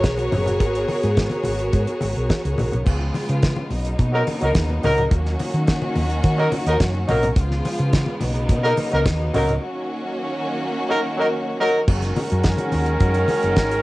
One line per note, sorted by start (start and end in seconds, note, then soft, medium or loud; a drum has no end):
0.00 2.83 B3 medium
0.00 2.83 F#4 medium
0.00 2.82 G#4 medium
0.00 2.82 A#4 medium
0.00 2.82 C#5 medium
0.00 kick medium
0.00 closed hi-hat medium
0.00 muted conga soft
0.04 snare loud
0.18 closed hi-hat soft
0.18 muted conga soft
0.32 0.61 F#1 medium
0.32 open hi-hat medium
0.32 high conga medium
0.32 low conga medium
0.46 closed hi-hat soft
0.46 low conga medium
0.60 0.84 G#1 medium
0.60 kick loud
0.60 closed hi-hat medium
0.75 closed hi-hat soft
0.88 open hi-hat medium
0.88 high conga medium
1.03 1.26 G#2 medium
1.03 closed hi-hat soft
1.17 kick medium
1.17 snare loud
1.17 closed hi-hat medium
1.30 closed hi-hat soft
1.30 high conga medium
1.44 1.69 G#1 medium
1.44 open hi-hat medium
1.44 high conga medium
1.59 closed hi-hat soft
1.73 1.85 G#2 loud
1.73 kick medium
1.73 closed hi-hat medium
1.87 closed hi-hat soft
1.87 muted conga soft
2.01 2.14 G#1 loud
2.01 open hi-hat medium
2.01 high conga medium
2.16 2.28 B1 medium
2.16 closed hi-hat soft
2.29 kick medium
2.29 snare loud
2.29 closed hi-hat medium
2.29 muted conga soft
2.45 2.56 C#2 medium
2.45 closed hi-hat soft
2.58 2.70 B1 medium
2.58 open hi-hat medium
2.58 high conga medium
2.58 low conga medium
2.72 2.84 B1 medium
2.72 closed hi-hat soft
2.72 low conga medium
2.86 3.10 C#2 loud
2.86 3.70 C#3 medium
2.86 3.70 F3 medium
2.86 3.70 G#3 medium
2.86 3.70 B3 medium
2.86 3.70 F4 medium
2.86 kick loud
2.86 crash loud
2.86 muted conga soft
3.01 muted conga soft
3.14 open hi-hat medium
3.14 high conga medium
3.29 3.52 C#3 medium
3.29 closed hi-hat soft
3.43 kick medium
3.43 snare loud
3.43 closed hi-hat medium
3.43 muted conga soft
3.56 muted conga soft
3.56 high conga medium
3.70 3.94 B1 medium
3.70 5.10 C#3 medium
3.70 7.34 F#3 medium
3.70 7.34 A#3 medium
3.70 5.11 B3 medium
3.70 5.11 D#4 medium
3.70 open hi-hat medium
3.70 high conga medium
3.85 closed hi-hat medium
3.99 4.22 B2 loud
3.99 kick loud
3.99 closed hi-hat medium
4.13 4.22 F#3 medium
4.13 4.22 D#4 medium
4.13 4.22 A#4 medium
4.27 open hi-hat medium
4.27 high conga medium
4.41 4.53 C#2 medium
4.41 4.50 F#3 medium
4.41 4.50 D#4 medium
4.41 4.50 A#4 medium
4.41 closed hi-hat soft
4.55 4.79 D#2 medium
4.55 kick loud
4.55 snare loud
4.55 closed hi-hat medium
4.70 muted conga soft
4.83 5.07 C#2 medium
4.83 5.01 F#3 medium
4.83 5.01 D#4 medium
4.83 5.01 A#4 loud
4.83 open hi-hat medium
4.83 high conga medium
4.83 low conga medium
4.98 closed hi-hat soft
4.98 low conga medium
5.11 5.35 D#2 loud
5.11 7.35 D#3 medium
5.11 7.36 C#4 medium
5.11 7.36 F#4 medium
5.11 kick loud
5.11 closed hi-hat medium
5.11 muted conga soft
5.25 snare soft
5.39 open hi-hat medium
5.39 high conga medium
5.54 5.77 D#3 loud
5.54 closed hi-hat soft
5.67 kick medium
5.67 snare loud
5.67 closed hi-hat medium
5.82 muted conga soft
5.82 high conga medium
5.96 6.19 D#2 medium
5.96 open hi-hat medium
5.96 high conga medium
6.10 closed hi-hat soft
6.23 6.47 D#3 loud
6.23 kick loud
6.23 closed hi-hat medium
6.23 muted conga soft
6.38 6.47 F#3 medium
6.38 6.47 D#4 medium
6.38 6.47 A#4 medium
6.38 muted conga soft
6.52 open hi-hat medium
6.52 high conga medium
6.66 6.78 D#2 medium
6.66 6.75 F#3 medium
6.66 6.75 D#4 medium
6.66 6.75 A#4 medium
6.66 closed hi-hat soft
6.80 7.04 F#2 medium
6.80 kick loud
6.80 snare loud
6.80 closed hi-hat medium
6.95 muted conga soft
7.08 7.32 B1 medium
7.08 7.26 F#3 loud
7.08 7.26 D#4 medium
7.08 7.26 A#4 medium
7.08 open hi-hat medium
7.08 high conga medium
7.08 low conga medium
7.23 closed hi-hat soft
7.23 low conga medium
7.36 7.60 C#2 loud
7.36 9.61 C#3 medium
7.36 8.21 F3 medium
7.36 8.22 G#3 medium
7.36 9.61 B3 medium
7.36 8.21 F4 medium
7.36 kick loud
7.36 closed hi-hat medium
7.51 snare soft
7.51 muted conga soft
7.65 open hi-hat medium
7.65 high conga medium
7.79 8.03 C#3 medium
7.79 closed hi-hat soft
7.93 kick medium
7.93 snare loud
7.93 closed hi-hat medium
8.06 high conga medium
8.20 8.51 B1 loud
8.20 11.84 F#3 medium
8.20 9.60 A#3 medium
8.20 9.60 D#4 medium
8.20 open hi-hat medium
8.20 high conga medium
8.35 closed hi-hat soft
8.49 8.73 B2 loud
8.49 kick loud
8.49 closed hi-hat medium
8.49 muted conga soft
8.63 8.73 F#3 medium
8.63 8.72 D#4 loud
8.63 8.72 A#4 loud
8.77 open hi-hat medium
8.77 high conga medium
8.92 9.04 C#2 medium
8.92 9.01 F#3 medium
8.92 9.01 D#4 medium
8.92 9.01 A#4 loud
8.92 closed hi-hat soft
9.06 9.29 D#2 medium
9.06 kick loud
9.06 snare loud
9.06 closed hi-hat medium
9.06 muted conga soft
9.34 9.58 C#2 medium
9.34 9.52 F#3 loud
9.34 9.52 D#4 loud
9.34 9.52 A#4 loud
9.34 open hi-hat medium
9.34 high conga medium
9.34 low conga medium
9.49 closed hi-hat soft
9.49 low conga medium
9.62 11.85 D#3 medium
9.62 11.85 A#3 medium
9.62 11.85 C#4 medium
9.62 11.85 F#4 medium
10.89 10.98 F#3 loud
10.89 10.98 D#4 medium
10.89 10.99 A#4 loud
11.18 11.27 F#3 medium
11.18 11.27 D#4 medium
11.18 11.27 A#4 medium
11.60 11.78 F#3 loud
11.60 11.78 D#4 medium
11.60 11.78 A#4 loud
11.88 12.11 F#1 loud
11.88 13.82 D#3 medium
11.88 13.82 F#3 medium
11.88 13.82 G#3 medium
11.88 13.82 C#4 medium
11.88 13.82 F#4 medium
11.88 13.82 A#4 medium
11.88 kick loud
11.88 crash loud
11.88 muted conga soft
12.02 snare soft
12.02 closed hi-hat soft
12.16 open hi-hat medium
12.16 high conga medium
12.30 12.54 F#2 medium
12.30 closed hi-hat soft
12.44 kick loud
12.44 snare loud
12.44 closed hi-hat medium
12.58 closed hi-hat soft
12.58 high conga medium
12.72 12.96 D#2 medium
12.72 open hi-hat medium
12.72 high conga medium
12.86 closed hi-hat medium
13.00 13.24 F#2 loud
13.00 kick loud
13.00 closed hi-hat medium
13.14 closed hi-hat soft
13.14 muted conga soft
13.28 open hi-hat medium
13.28 high conga medium
13.43 13.57 F#1 medium
13.43 closed hi-hat soft
13.56 13.80 G#1 medium
13.56 kick loud
13.56 snare loud
13.56 closed hi-hat medium
13.71 closed hi-hat soft